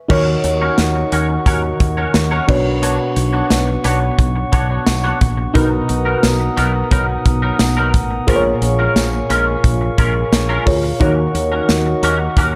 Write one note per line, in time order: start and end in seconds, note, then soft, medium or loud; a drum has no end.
0.08 0.34 D#2 medium
0.08 1.08 D#3 medium
0.08 0.31 C#4 medium
0.08 2.44 D#4 medium
0.08 2.44 F#4 medium
0.08 0.26 F#4 medium
0.08 2.44 A#4 medium
0.08 2.46 A#4 medium
0.08 0.26 A#4 medium
0.08 0.26 C#5 medium
0.08 2.45 C#5 medium
0.08 2.46 D#5 medium
0.08 8.24 F#5 medium
0.08 5.51 C#6 medium
0.08 kick loud
0.08 crash medium
0.27 muted clean electric guitar stroke soft
0.44 0.69 D#2 medium
0.44 muted clean electric guitar stroke soft
0.44 closed hi-hat medium
0.61 0.78 C#4 medium
0.61 0.78 F#4 medium
0.61 0.78 A#4 medium
0.61 0.78 C#5 medium
0.78 1.03 D#2 loud
0.78 snare loud
0.78 closed hi-hat medium
0.95 muted clean electric guitar stroke soft
1.12 1.37 D#2 medium
1.12 1.34 C#4 medium
1.12 1.29 F#4 medium
1.12 1.29 A#4 medium
1.12 1.28 C#5 medium
1.12 closed hi-hat medium
1.29 muted clean electric guitar stroke soft
1.46 1.71 D#2 loud
1.46 1.68 C#4 medium
1.46 1.63 F#4 medium
1.46 1.63 A#4 medium
1.46 1.62 C#5 medium
1.46 kick medium
1.46 closed hi-hat medium
1.63 muted clean electric guitar stroke soft
1.80 2.05 D#2 loud
1.80 muted clean electric guitar stroke soft
1.80 kick medium
1.80 closed hi-hat medium
1.97 2.13 C#4 medium
1.97 2.13 F#4 medium
1.97 2.13 A#4 medium
1.97 2.14 C#5 medium
2.14 2.39 D#2 medium
2.14 muted clean electric guitar stroke soft
2.14 snare loud
2.14 closed hi-hat medium
2.31 2.48 C#4 medium
2.31 2.47 F#4 medium
2.31 2.48 A#4 medium
2.31 2.48 C#5 medium
2.48 2.98 B1 medium
2.48 3.47 B2 medium
2.48 8.24 B3 medium
2.48 5.17 D4 medium
2.48 5.52 D4 medium
2.48 5.17 F#4 medium
2.48 5.18 B4 medium
2.48 5.18 C#5 medium
2.48 muted clean electric guitar stroke soft
2.48 kick loud
2.48 crash medium
2.65 muted clean electric guitar stroke soft
2.82 3.04 B3 medium
2.82 2.99 D4 medium
2.82 2.98 F#4 medium
2.82 2.98 C#5 medium
2.82 closed hi-hat medium
2.99 muted clean electric guitar stroke soft
3.16 3.41 B1 medium
3.16 muted clean electric guitar stroke soft
3.16 closed hi-hat medium
3.33 3.50 B3 soft
3.33 3.50 D4 medium
3.33 3.50 F#4 medium
3.33 3.50 C#5 medium
3.50 3.75 B1 loud
3.50 snare loud
3.50 closed hi-hat medium
3.50 tambourine medium
3.67 muted clean electric guitar stroke soft
3.84 4.09 B1 medium
3.84 4.06 B3 medium
3.84 4.01 D4 medium
3.84 4.00 F#4 medium
3.84 4.00 C#5 medium
3.84 closed hi-hat medium
4.01 muted clean electric guitar stroke soft
4.18 4.43 B1 loud
4.18 muted clean electric guitar stroke soft
4.18 kick medium
4.18 closed hi-hat medium
4.36 muted clean electric guitar stroke soft
4.52 4.77 B1 loud
4.52 4.69 B3 medium
4.52 4.69 D4 medium
4.52 4.69 F#4 medium
4.52 4.68 C#5 loud
4.52 kick medium
4.52 closed hi-hat medium
4.69 4.85 B3 medium
4.69 4.86 D4 medium
4.69 4.86 F#4 medium
4.69 4.86 C#5 medium
4.86 5.12 B1 loud
4.86 muted clean electric guitar stroke soft
4.86 snare loud
4.86 closed hi-hat medium
4.86 tambourine medium
5.04 5.19 B3 medium
5.04 5.20 D4 medium
5.04 5.20 F#4 medium
5.04 5.20 C#5 medium
5.20 5.46 A#1 medium
5.20 muted clean electric guitar stroke soft
5.20 kick medium
5.20 closed hi-hat medium
5.37 muted clean electric guitar stroke soft
5.54 5.80 B1 medium
5.54 6.53 B2 medium
5.54 5.76 F#3 medium
5.54 5.71 B3 medium
5.54 8.23 D#4 medium
5.54 5.71 D#4 medium
5.54 8.24 F#4 medium
5.54 5.70 A#4 medium
5.54 8.24 A#4 medium
5.54 8.24 B4 medium
5.54 8.25 A#5 medium
5.54 8.25 D#6 medium
5.54 kick loud
5.54 closed hi-hat medium
5.71 muted clean electric guitar stroke soft
5.88 6.14 B1 loud
5.88 muted clean electric guitar stroke soft
5.88 closed hi-hat medium
6.05 6.23 F#3 medium
6.05 6.23 B3 medium
6.05 6.23 D#4 medium
6.05 6.23 A#4 medium
6.23 6.48 B1 loud
6.23 snare loud
6.23 closed hi-hat medium
6.23 tambourine medium
6.40 muted clean electric guitar stroke soft
6.57 6.82 B1 loud
6.57 6.78 F#3 medium
6.57 6.74 B3 medium
6.57 6.73 D#4 medium
6.57 6.73 A#4 medium
6.57 closed hi-hat medium
6.74 muted clean electric guitar stroke soft
6.91 7.16 B1 loud
6.91 7.13 F#3 medium
6.91 7.08 B3 medium
6.91 7.07 D#4 medium
6.91 7.07 A#4 medium
6.91 kick medium
6.91 closed hi-hat medium
7.08 muted clean electric guitar stroke soft
7.25 7.50 B1 loud
7.25 muted clean electric guitar stroke soft
7.25 kick medium
7.25 closed hi-hat medium
7.42 7.58 F#3 medium
7.42 7.59 B3 medium
7.42 7.59 D#4 medium
7.42 7.59 A#4 medium
7.59 7.94 B1 medium
7.59 muted clean electric guitar stroke soft
7.59 snare loud
7.59 closed hi-hat medium
7.59 tambourine medium
7.77 7.92 F#3 medium
7.77 7.93 B3 medium
7.77 7.93 D#4 medium
7.77 7.93 A#4 medium
7.94 8.19 A1 medium
7.94 muted clean electric guitar stroke soft
7.94 kick medium
7.94 closed hi-hat medium
8.11 muted clean electric guitar stroke soft
8.27 8.53 A#1 loud
8.27 9.26 A#2 medium
8.27 8.49 G#3 medium
8.27 8.44 C#4 medium
8.27 10.62 F4 medium
8.27 8.44 F4 medium
8.27 10.62 G#4 medium
8.27 10.63 A#4 medium
8.27 12.55 A#4 medium
8.27 8.44 A#4 loud
8.27 8.35 C5 medium
8.27 10.98 F5 medium
8.27 10.98 G#5 medium
8.27 12.55 C#6 medium
8.27 kick loud
8.27 closed hi-hat medium
8.36 10.66 C#5 medium
8.45 muted clean electric guitar stroke soft
8.62 8.86 A#1 loud
8.62 muted clean electric guitar stroke soft
8.62 closed hi-hat medium
8.79 8.96 G#3 soft
8.79 8.96 C#4 medium
8.79 8.96 F4 medium
8.79 8.96 A#4 medium
8.96 9.20 A#1 medium
8.96 snare medium
8.96 closed hi-hat medium
8.96 tambourine medium
9.13 muted clean electric guitar stroke soft
9.30 9.55 A#1 medium
9.30 9.51 G#3 medium
9.30 9.46 C#4 medium
9.30 9.46 F4 medium
9.30 9.46 A#4 medium
9.30 closed hi-hat medium
9.47 muted clean electric guitar stroke soft
9.64 9.89 A#1 medium
9.64 kick medium
9.64 closed hi-hat medium
9.81 muted clean electric guitar stroke soft
9.98 10.23 A#1 loud
9.98 10.20 G#3 medium
9.98 10.15 C#4 medium
9.98 10.14 F4 medium
9.98 10.14 A#4 medium
9.98 kick medium
9.98 closed hi-hat medium
10.15 muted clean electric guitar stroke soft
10.32 10.57 A#1 loud
10.32 muted clean electric guitar stroke soft
10.32 snare loud
10.32 closed hi-hat medium
10.32 tambourine medium
10.49 10.65 G#3 medium
10.49 10.65 C#4 medium
10.49 10.66 F4 medium
10.49 10.66 A#4 medium
10.66 10.91 D2 medium
10.66 11.00 F4 medium
10.66 11.01 G#4 medium
10.66 11.00 A#4 medium
10.66 11.01 C#5 medium
10.66 muted clean electric guitar stroke soft
10.66 kick medium
10.66 open hi-hat medium
10.83 muted clean electric guitar stroke soft
11.00 11.25 D#2 medium
11.00 11.99 D#3 medium
11.00 11.22 A#3 medium
11.00 11.17 C#4 medium
11.00 12.55 D#4 medium
11.00 12.55 F#4 medium
11.00 11.17 F#4 medium
11.00 11.16 A#4 medium
11.00 12.55 A#4 medium
11.00 12.55 C#5 medium
11.00 12.55 D#5 medium
11.00 12.55 F#5 medium
11.00 kick loud
11.00 closed hi-hat medium
11.17 muted clean electric guitar stroke soft
11.34 11.59 D#2 loud
11.34 muted clean electric guitar stroke soft
11.34 closed hi-hat medium
11.52 11.69 A#3 medium
11.52 11.69 C#4 medium
11.52 11.69 F#4 medium
11.52 11.68 A#4 medium
11.69 11.94 D#2 medium
11.69 snare loud
11.69 closed hi-hat medium
11.69 tambourine medium
11.86 muted clean electric guitar stroke soft
12.03 12.27 D#2 loud
12.03 12.24 A#3 medium
12.03 12.20 C#4 medium
12.03 12.19 F#4 medium
12.03 12.19 A#4 loud
12.03 closed hi-hat medium
12.20 muted clean electric guitar stroke medium
12.37 12.55 D#2 loud
12.37 12.55 A#3 medium
12.37 12.54 C#4 medium
12.37 12.53 F#4 loud
12.37 12.53 A#4 medium
12.37 kick medium
12.37 closed hi-hat medium